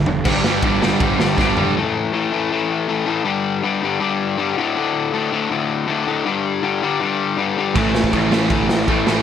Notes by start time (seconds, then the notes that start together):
0.06 G1 G2 D3, floor tom
0.24 G1 G2 D3 G3, kick, crash
0.44 G1 G2 D3 G3, snare
0.62 G1 G2 D3 G3, kick, ride
0.82 G2 D3 G3, snare
1.00 G1 G2 D3 G3, kick, ride
1.19 G1 G2 D3 G3, snare
1.38 G1 G2 D3 G3, kick, snare
1.57 G1 G2 D3 G3, floor tom
1.76 A2 E3 A3
2.13 A2 E3 A3
2.32 A2 E3 A3
2.51 A2 E3 A3
2.88 A2 E3 A3
3.06 A2 E3 A3
3.24 G2 D3 G3
3.63 G2 D3 G3
3.83 G2 D3 G3
4.00 G2 D3 G3
4.38 G2 D3 G3
4.57 D2 A2 D3
4.76 D2 A2 D3
5.13 D2 A2 D3
5.32 D2 A2 D3
5.50 D2 A2 D3
5.87 D2 A2 D3
6.06 D2 A2 D3
6.25 G2 D3 G3
6.62 G2 D3 G3
6.82 G2 D3 G3
7.00 G2 D3 G3
7.37 G2 D3 G3
7.57 G2 D3 G3
7.75 A1 A2 E3 A3, kick, crash
7.95 snare
8.04 kick
8.13 A1 A2 E3 A3, kick, crash
8.32 A1 A2 E3 A3, snare
8.50 G1 A2 E3 A3, kick, crash
8.69 A1, snare
8.88 A1 A2 E3 A3, kick, crash
9.07 A1 A2 E3 A3, snare